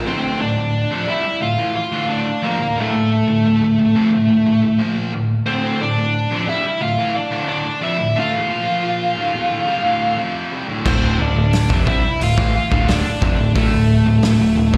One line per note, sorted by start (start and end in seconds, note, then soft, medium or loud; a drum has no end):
0.06 0.38 D2 medium
0.06 0.39 A2 medium
0.06 0.39 D3 loud
0.06 0.38 C4 medium
0.06 0.41 C5 loud
0.40 0.56 D2 medium
0.40 0.57 A2 medium
0.40 1.04 D4 medium
0.40 1.10 D5 loud
0.57 0.84 D2 medium
0.57 0.84 A2 medium
0.91 1.07 F2 loud
0.91 1.06 C3 loud
1.07 1.23 C3 loud
1.07 1.24 G3 loud
1.07 1.39 E4 medium
1.07 1.42 E5 loud
1.25 muted overdriven electric guitar stroke medium
1.41 1.57 D2 medium
1.41 1.57 A2 medium
1.41 1.73 F4 medium
1.41 1.75 F5 loud
1.58 1.74 A2 medium
1.58 1.74 E3 loud
1.75 2.07 F4 medium
1.75 2.11 F5 loud
1.75 muted overdriven electric guitar stroke medium
1.92 2.25 D2 loud
1.92 2.25 A2 loud
1.92 2.26 D3 loud
2.09 2.40 D4 medium
2.09 2.45 D5 loud
2.26 muted overdriven electric guitar stroke medium
2.42 2.59 F2 medium
2.42 2.59 C3 loud
2.42 2.75 A#3 medium
2.42 2.79 A#4 medium
2.60 2.76 D2 medium
2.60 2.77 A2 medium
2.77 2.93 D2 loud
2.77 2.93 A2 medium
2.77 4.77 A3 medium
2.82 4.78 A4 medium
2.94 3.21 D2 medium
2.94 3.21 A2 medium
3.28 3.44 D2 medium
3.28 3.44 A2 medium
3.45 3.60 D2 medium
3.45 3.61 A2 medium
3.61 3.78 D2 medium
3.61 3.78 A2 medium
3.79 3.95 D2 medium
3.79 3.96 A2 medium
3.95 4.11 F2 loud
3.95 4.11 C3 loud
4.12 4.27 D2 medium
4.12 4.28 A2 medium
4.29 4.45 D2 medium
4.29 4.45 A2 medium
4.46 4.61 D2 medium
4.46 4.61 A2 medium
4.62 4.78 D2 medium
4.62 4.79 A2 medium
4.79 5.12 A#2 medium
4.79 5.12 F3 medium
4.79 5.12 A#3 loud
5.13 5.40 D2 medium
5.13 5.40 A2 medium
5.46 5.79 D2 medium
5.46 5.79 A2 medium
5.46 5.80 D3 loud
5.46 5.78 C4 medium
5.46 5.81 C5 loud
5.81 5.97 D2 medium
5.81 5.98 A2 medium
5.81 6.45 D4 medium
5.81 6.49 D5 loud
5.98 6.25 D2 medium
5.98 6.25 A2 medium
6.31 6.47 F2 loud
6.31 6.47 C3 loud
6.48 6.64 C3 loud
6.48 6.64 G3 loud
6.48 6.80 E4 medium
6.48 6.82 E5 loud
6.65 muted overdriven electric guitar stroke medium
6.81 6.98 D2 medium
6.81 6.97 A2 medium
6.81 7.13 F4 loud
6.81 7.16 F5 medium
6.98 7.14 A2 medium
6.98 7.15 E3 loud
7.15 7.47 D4 medium
7.15 7.47 D5 loud
7.15 muted overdriven electric guitar stroke medium
7.31 7.64 D2 loud
7.31 7.64 A2 medium
7.31 7.65 D3 loud
7.48 7.80 D4 medium
7.48 7.84 D5 loud
7.65 muted overdriven electric guitar stroke medium
7.81 7.98 F2 medium
7.81 7.98 C3 loud
7.81 8.15 E4 medium
7.81 8.18 E5 loud
7.99 8.16 D2 medium
7.99 8.15 A2 medium
8.15 8.32 D3 loud
8.15 8.32 A3 loud
8.15 10.16 F4 medium
8.20 10.16 F5 medium
8.32 8.49 E2 medium
8.32 8.49 B2 medium
8.49 9.16 A#2 medium
8.49 9.17 F3 loud
8.49 9.17 A#3 loud
9.16 9.33 D2 medium
9.16 9.33 A2 loud
9.33 9.49 E2 loud
9.33 9.49 B2 loud
9.49 9.66 D2 medium
9.49 9.66 A2 loud
9.66 9.83 C3 medium
9.66 9.84 G3 loud
9.84 10.16 D2 loud
9.84 10.17 A2 medium
9.84 10.18 D3 loud
10.17 10.50 F2 medium
10.17 10.51 C3 loud
10.17 10.51 F3 loud
10.52 10.68 C3 loud
10.52 10.68 G3 loud
10.68 10.83 D2 medium
10.68 10.84 A2 loud
10.85 11.17 D1 loud
10.85 11.18 D2 medium
10.85 11.18 A2 medium
10.85 11.19 D3 loud
10.85 11.18 C4 medium
10.85 11.18 C5 loud
10.85 kick loud
10.85 crash loud
11.19 11.36 D1 medium
11.19 11.35 D2 medium
11.19 11.35 A2 medium
11.19 11.84 D4 medium
11.19 11.88 D5 medium
11.36 11.68 D1 medium
11.36 11.63 D2 medium
11.36 11.64 A2 medium
11.53 snare loud
11.53 open hi-hat medium
11.69 11.86 F1 medium
11.69 11.85 F2 loud
11.69 11.84 C3 loud
11.69 kick loud
11.85 12.03 C2 loud
11.85 12.02 C3 loud
11.85 12.03 G3 loud
11.85 12.19 E4 medium
11.85 12.19 E5 loud
11.85 kick loud
12.03 muted overdriven electric guitar stroke medium
12.03 muted picked electric bass stroke soft
12.20 12.37 D1 medium
12.20 12.36 D2 medium
12.20 12.35 A2 medium
12.20 12.53 F4 medium
12.20 12.55 F5 loud
12.20 open hi-hat medium
12.36 12.54 A1 medium
12.36 12.53 A2 medium
12.36 12.53 E3 loud
12.36 kick loud
12.54 12.87 F4 medium
12.54 12.87 F5 loud
12.54 muted overdriven electric guitar stroke medium
12.54 muted picked electric bass stroke soft
12.70 13.03 D1 medium
12.70 13.04 D2 medium
12.70 13.04 A2 medium
12.70 13.05 D3 loud
12.70 kick loud
12.88 13.52 D4 medium
12.88 13.52 D5 loud
12.88 snare loud
12.88 open hi-hat medium
13.05 muted overdriven electric guitar stroke medium
13.05 muted picked electric bass stroke soft
13.21 13.38 F1 loud
13.21 13.38 F2 medium
13.21 13.38 C3 loud
13.21 kick loud
13.38 13.55 D1 medium
13.38 13.54 D2 medium
13.38 13.55 A2 medium
13.55 13.72 D1 loud
13.55 13.71 D2 medium
13.55 13.71 A2 loud
13.55 14.77 A3 medium
13.55 14.77 A4 loud
13.55 kick loud
13.55 open hi-hat medium
13.72 14.04 D1 medium
13.72 14.00 D2 medium
13.72 14.00 A2 medium
14.06 14.22 D1 medium
14.06 14.22 D2 medium
14.06 14.22 A2 medium
14.22 14.39 D1 medium
14.22 14.38 D2 medium
14.22 14.39 A2 medium
14.22 snare loud
14.22 open hi-hat medium
14.40 14.56 D1 medium
14.40 14.55 D2 medium
14.40 14.56 A2 medium
14.56 14.73 D1 medium
14.56 14.73 D2 medium
14.56 14.73 A2 medium
14.73 14.77 F1 loud
14.73 14.77 F2 loud
14.73 14.77 C3 loud
14.73 kick loud